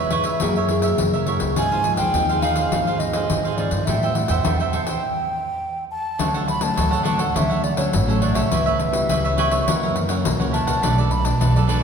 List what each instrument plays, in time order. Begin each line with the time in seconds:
Already playing: upright bass E2, nylon-string guitar G#2 B3 E4 G#4, cavaquinho E5, flute E5
0.00 cavaquinho B4 C#5
0.10 cavaquinho E4 B4 C#5 E5, pandeiro
0.24 cavaquinho B4 C#5 E5, pandeiro
0.40 upright bass F#2, nylon-string guitar F#3 A#3 E4 G#4, cavaquinho F#4 A#4 C#5 E5, pandeiro
0.56 cavaquinho A#4 C#5 E5, pandeiro
0.69 nylon-string guitar A#3 E4 G#4, muted cavaquinho stroke, pandeiro
0.82 cavaquinho A#4 C#5 E5, pandeiro
0.98 upright bass F#2, nylon-string guitar C#3, pandeiro
1.13 cavaquinho A#4 C#5 E5, pandeiro
1.26 nylon-string guitar A#3 E4 G#4, cavaquinho F#4 A#4 C#5 E5, pandeiro
1.40 upright bass C#2, pandeiro
1.56 upright bass G#2, nylon-string guitar G#2 F3 C4 D#4, cavaquinho D#4 G#4 C5 F5, flute G#5, pandeiro
1.72 nylon-string guitar F3 C4 D#4, cavaquinho G#4 C5 F5, pandeiro
1.84 nylon-string guitar F3 C4 D#4, muted cavaquinho stroke, pandeiro
1.97 upright bass D#2, cavaquinho G#4 C5 F5, flute G5, pandeiro
2.14 upright bass D#2, nylon-string guitar D#3 F3 C4 D#4, cavaquinho D#4 G#4 C5 F5, pandeiro
2.29 cavaquinho G#4 C5 F5, pandeiro
2.42 cavaquinho D#4 G#4 C5 F5, flute F5, pandeiro
2.56 cavaquinho G#4 C5 F5, pandeiro
2.72 upright bass D#2, nylon-string guitar G#2 F3 C4 D#4, cavaquinho D#4 G#4 C5 F5, pandeiro
2.87 cavaquinho G#4 C5 F5, pandeiro
2.99 nylon-string guitar F3 C4 D#4, flute D#5, muted cavaquinho stroke, pandeiro
3.13 cavaquinho G#4 C5 F5, pandeiro
3.30 upright bass G#2, nylon-string guitar D#3, pandeiro
3.45 cavaquinho G#4 C5 F5, pandeiro
3.56 nylon-string guitar F3 C4 D#4, cavaquinho D#4 G#4 C5, flute D5, pandeiro
3.60 cavaquinho F5
3.71 upright bass G2, pandeiro
3.86 nylon-string guitar A2 G3 C4 E4, upright bass A2, cavaquinho A4 C5 E5, flute E5, pandeiro
3.90 cavaquinho G5
4.03 nylon-string guitar G3 C4 E4, cavaquinho C5 E5 G5, pandeiro
4.13 nylon-string guitar G3 C4 E4, flute F#5, muted cavaquinho stroke, pandeiro
4.28 upright bass E2, cavaquinho C5 E5 G5, pandeiro
4.43 upright bass E2, nylon-string guitar E3 G3 C4 E4, cavaquinho A4 C5 E5 G5, flute G5, pandeiro
4.53 flute F#5
4.58 cavaquinho E5 G5, flute G5, pandeiro
4.62 cavaquinho C5
4.71 cavaquinho A4 C5, flute F#5, pandeiro
4.75 cavaquinho E5 G5
4.85 cavaquinho C5 E5 G5, flute G5, pandeiro
5.91 flute A5
6.18 upright bass D2, nylon-string guitar D3 F#3 A3 C#4, cavaquinho D4 A4 C#5 F#5, pandeiro
6.34 cavaquinho A4 C#5 F#5, pandeiro
6.47 flute B5, muted cavaquinho stroke, pandeiro
6.61 nylon-string guitar F#3 A3 C#4, flute A5, pandeiro
6.76 upright bass D2, nylon-string guitar A2, cavaquinho D4 A4 C#5 F#5, pandeiro
6.91 cavaquinho A4 C#5 F#5, pandeiro
7.03 nylon-string guitar F#3 A3 C#4, cavaquinho D4 A4 C#5 F#5, flute A5, pandeiro
7.18 cavaquinho A4 C#5 F#5, flute F#5, pandeiro
7.34 upright bass D3, nylon-string guitar D3 F#3 A3 C#4, cavaquinho D4 A4 C#5 F#5, flute E5, pandeiro
7.49 cavaquinho A4 C#5 F#5, pandeiro
7.63 flute D5, muted cavaquinho stroke, pandeiro
7.77 nylon-string guitar F#3 A3 C#4, cavaquinho A4 C#5 F#5, flute C#5, pandeiro
7.93 upright bass A1, nylon-string guitar A2, pandeiro
8.07 nylon-string guitar F#3 A3 C#4, cavaquinho A4 C#5 F#5, pandeiro
8.21 cavaquinho D4 A4 C#5 F#5, flute D5, pandeiro
8.34 upright bass C2, cavaquinho A4 C#5 F#5, flute E5, pandeiro
8.50 upright bass C#2, nylon-string guitar C#3 G3 B3 E4, cavaquinho G4 B4 C#5 E5, pandeiro
8.66 cavaquinho B4 C#5 E5, pandeiro
8.79 muted cavaquinho stroke, pandeiro
8.92 nylon-string guitar G3 B3 E4, pandeiro
9.09 upright bass C#2, nylon-string guitar C#3, cavaquinho G4 B4 C#5 E5, pandeiro
9.24 cavaquinho B4 C#5 E5, pandeiro
9.36 nylon-string guitar G3 B3 E4, cavaquinho G4 B4 C#5 E5, pandeiro
9.51 cavaquinho B4 C#5 E5, pandeiro
9.66 nylon-string guitar F#2 E3 A#3 C#4, upright bass F#2, cavaquinho E4 A#4 C#5 F#5, pandeiro
9.82 cavaquinho A#4 C#5 F#5, pandeiro
9.96 muted cavaquinho stroke, pandeiro
10.08 nylon-string guitar E3 A#3 C#4, cavaquinho A#4 C#5 F#5, pandeiro
10.25 upright bass C#2, nylon-string guitar C#3, pandeiro
10.40 nylon-string guitar E3 A#3 C#4, cavaquinho A#4 C#5 F#5, pandeiro
10.53 cavaquinho E4 A#4 C#5 F#5, flute A5, pandeiro
10.67 upright bass C#2, cavaquinho A#4 C#5 F#5, pandeiro
10.82 upright bass B1, nylon-string guitar B2 F#3 A3 D4, cavaquinho D4 A4 B4 D5, pandeiro
10.98 cavaquinho A4 B4 D5, pandeiro
11.11 flute B5, muted cavaquinho stroke, pandeiro
11.25 nylon-string guitar F#3 A3 D4, flute A5, pandeiro
11.40 upright bass B1, nylon-string guitar F#2, cavaquinho D4 A4 B4 D5, pandeiro
11.56 cavaquinho A4 B4 D5, pandeiro
11.68 nylon-string guitar F#3 A3 D4, cavaquinho D4 A4 B4 D5, flute A5, pandeiro